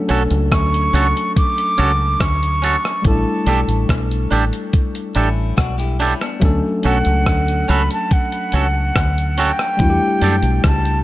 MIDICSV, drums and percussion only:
0, 0, Header, 1, 2, 480
1, 0, Start_track
1, 0, Tempo, 844238
1, 1734, Time_signature, 4, 2, 24, 8
1, 6275, End_track
2, 0, Start_track
2, 0, Title_t, "Drums"
2, 51, Note_on_c, 9, 42, 76
2, 108, Note_off_c, 9, 42, 0
2, 174, Note_on_c, 9, 42, 59
2, 231, Note_off_c, 9, 42, 0
2, 294, Note_on_c, 9, 36, 110
2, 296, Note_on_c, 9, 37, 126
2, 296, Note_on_c, 9, 42, 96
2, 351, Note_off_c, 9, 36, 0
2, 352, Note_off_c, 9, 42, 0
2, 353, Note_off_c, 9, 37, 0
2, 422, Note_on_c, 9, 42, 56
2, 478, Note_off_c, 9, 42, 0
2, 542, Note_on_c, 9, 42, 73
2, 599, Note_off_c, 9, 42, 0
2, 665, Note_on_c, 9, 42, 62
2, 722, Note_off_c, 9, 42, 0
2, 776, Note_on_c, 9, 36, 114
2, 778, Note_on_c, 9, 42, 96
2, 833, Note_off_c, 9, 36, 0
2, 835, Note_off_c, 9, 42, 0
2, 899, Note_on_c, 9, 42, 58
2, 956, Note_off_c, 9, 42, 0
2, 1012, Note_on_c, 9, 42, 75
2, 1069, Note_off_c, 9, 42, 0
2, 1253, Note_on_c, 9, 36, 113
2, 1254, Note_on_c, 9, 37, 115
2, 1258, Note_on_c, 9, 42, 115
2, 1309, Note_off_c, 9, 36, 0
2, 1311, Note_off_c, 9, 37, 0
2, 1314, Note_off_c, 9, 42, 0
2, 1381, Note_on_c, 9, 42, 50
2, 1438, Note_off_c, 9, 42, 0
2, 1499, Note_on_c, 9, 42, 81
2, 1556, Note_off_c, 9, 42, 0
2, 1621, Note_on_c, 9, 37, 73
2, 1678, Note_off_c, 9, 37, 0
2, 1731, Note_on_c, 9, 42, 93
2, 1733, Note_on_c, 9, 36, 106
2, 1788, Note_off_c, 9, 42, 0
2, 1790, Note_off_c, 9, 36, 0
2, 1970, Note_on_c, 9, 42, 74
2, 2027, Note_off_c, 9, 42, 0
2, 2096, Note_on_c, 9, 42, 60
2, 2153, Note_off_c, 9, 42, 0
2, 2213, Note_on_c, 9, 36, 114
2, 2218, Note_on_c, 9, 37, 117
2, 2218, Note_on_c, 9, 42, 94
2, 2269, Note_off_c, 9, 36, 0
2, 2275, Note_off_c, 9, 37, 0
2, 2275, Note_off_c, 9, 42, 0
2, 2339, Note_on_c, 9, 42, 55
2, 2396, Note_off_c, 9, 42, 0
2, 2455, Note_on_c, 9, 42, 72
2, 2511, Note_off_c, 9, 42, 0
2, 2575, Note_on_c, 9, 42, 66
2, 2632, Note_off_c, 9, 42, 0
2, 2691, Note_on_c, 9, 42, 96
2, 2692, Note_on_c, 9, 36, 114
2, 2748, Note_off_c, 9, 42, 0
2, 2749, Note_off_c, 9, 36, 0
2, 2814, Note_on_c, 9, 42, 63
2, 2871, Note_off_c, 9, 42, 0
2, 2927, Note_on_c, 9, 42, 78
2, 2983, Note_off_c, 9, 42, 0
2, 3171, Note_on_c, 9, 36, 112
2, 3172, Note_on_c, 9, 37, 118
2, 3176, Note_on_c, 9, 42, 103
2, 3228, Note_off_c, 9, 36, 0
2, 3229, Note_off_c, 9, 37, 0
2, 3232, Note_off_c, 9, 42, 0
2, 3295, Note_on_c, 9, 42, 48
2, 3352, Note_off_c, 9, 42, 0
2, 3412, Note_on_c, 9, 42, 79
2, 3469, Note_off_c, 9, 42, 0
2, 3533, Note_on_c, 9, 37, 72
2, 3590, Note_off_c, 9, 37, 0
2, 3648, Note_on_c, 9, 42, 85
2, 3650, Note_on_c, 9, 36, 115
2, 3704, Note_off_c, 9, 42, 0
2, 3707, Note_off_c, 9, 36, 0
2, 3884, Note_on_c, 9, 42, 69
2, 3941, Note_off_c, 9, 42, 0
2, 4008, Note_on_c, 9, 42, 58
2, 4064, Note_off_c, 9, 42, 0
2, 4130, Note_on_c, 9, 36, 116
2, 4130, Note_on_c, 9, 37, 120
2, 4130, Note_on_c, 9, 42, 87
2, 4187, Note_off_c, 9, 36, 0
2, 4187, Note_off_c, 9, 37, 0
2, 4187, Note_off_c, 9, 42, 0
2, 4255, Note_on_c, 9, 42, 53
2, 4312, Note_off_c, 9, 42, 0
2, 4372, Note_on_c, 9, 42, 68
2, 4429, Note_off_c, 9, 42, 0
2, 4495, Note_on_c, 9, 42, 68
2, 4552, Note_off_c, 9, 42, 0
2, 4610, Note_on_c, 9, 42, 97
2, 4612, Note_on_c, 9, 36, 118
2, 4667, Note_off_c, 9, 42, 0
2, 4669, Note_off_c, 9, 36, 0
2, 4732, Note_on_c, 9, 42, 58
2, 4789, Note_off_c, 9, 42, 0
2, 4845, Note_on_c, 9, 42, 85
2, 4902, Note_off_c, 9, 42, 0
2, 5092, Note_on_c, 9, 36, 109
2, 5092, Note_on_c, 9, 37, 121
2, 5096, Note_on_c, 9, 42, 106
2, 5149, Note_off_c, 9, 36, 0
2, 5149, Note_off_c, 9, 37, 0
2, 5153, Note_off_c, 9, 42, 0
2, 5220, Note_on_c, 9, 42, 52
2, 5277, Note_off_c, 9, 42, 0
2, 5331, Note_on_c, 9, 42, 83
2, 5388, Note_off_c, 9, 42, 0
2, 5454, Note_on_c, 9, 37, 76
2, 5510, Note_off_c, 9, 37, 0
2, 5566, Note_on_c, 9, 42, 86
2, 5571, Note_on_c, 9, 36, 113
2, 5623, Note_off_c, 9, 42, 0
2, 5627, Note_off_c, 9, 36, 0
2, 5808, Note_on_c, 9, 42, 78
2, 5865, Note_off_c, 9, 42, 0
2, 5927, Note_on_c, 9, 42, 61
2, 5984, Note_off_c, 9, 42, 0
2, 6048, Note_on_c, 9, 37, 127
2, 6048, Note_on_c, 9, 42, 100
2, 6050, Note_on_c, 9, 36, 118
2, 6105, Note_off_c, 9, 37, 0
2, 6105, Note_off_c, 9, 42, 0
2, 6107, Note_off_c, 9, 36, 0
2, 6171, Note_on_c, 9, 42, 51
2, 6227, Note_off_c, 9, 42, 0
2, 6275, End_track
0, 0, End_of_file